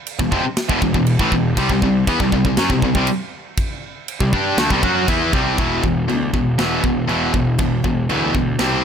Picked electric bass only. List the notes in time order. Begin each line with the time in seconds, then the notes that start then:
0.20 E1
0.32 F1
0.44 muted picked electric bass stroke
0.69 E1
0.82 E1
0.94 E1
1.19 A1
1.32 E1
1.57 C2
1.69 C2
1.82 C2
2.07 E2
2.20 C2
2.32 C2
2.45 C2
2.58 F#2
2.70 C2
2.82 C2
2.95 C2
4.20 C2
4.33 G2
4.57 D2
4.70 C2
4.83 F#2
5.08 E2
5.33 C2
5.58 E1
5.84 E1
6.08 D2
6.33 E1
6.59 E1
6.84 E1
7.09 E1
7.34 E1
7.59 E1
7.84 E1
8.10 D2
8.34 D2
8.60 C2